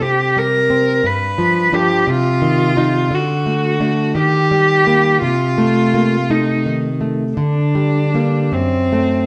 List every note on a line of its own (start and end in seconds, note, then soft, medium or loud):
0.00 1.01 C3 soft
0.00 0.58 C4 soft
0.00 0.39 G4 soft
0.37 0.92 G3 soft
0.37 1.07 A#4 medium
0.70 1.05 C4 soft
1.04 2.04 G2 soft
1.04 1.76 B4 soft
1.38 1.71 F3 soft
1.73 2.04 F3 soft
1.73 2.04 D4 soft
1.73 2.11 G4 medium
2.07 3.09 C3 soft
2.07 3.16 F4 medium
2.42 2.75 D#3 soft
2.77 3.08 D#3 soft
2.77 3.09 D#4 soft
3.11 4.13 D3 soft
3.11 4.18 F#4 soft
3.46 3.79 A3 soft
3.80 4.12 A3 soft
3.80 4.13 D4 soft
4.15 5.19 D#3 soft
4.15 5.22 G4 medium
4.51 4.85 G3 soft
4.87 5.19 G3 soft
4.87 5.19 A#3 soft
5.22 7.34 C3 soft
5.22 6.32 F4 medium
5.58 6.15 A3 soft
5.94 6.30 A#3 soft
6.30 6.87 A3 soft
6.30 6.66 D#4 soft
6.66 7.23 D#3 soft
7.01 7.38 A3 soft
7.37 8.49 D3 soft
7.37 8.54 D4 medium
7.75 8.13 G3 soft
8.14 8.49 G3 soft
8.14 8.50 A#3 soft
8.52 9.26 F#2 soft
8.52 9.26 C4 soft
8.92 9.26 A3 soft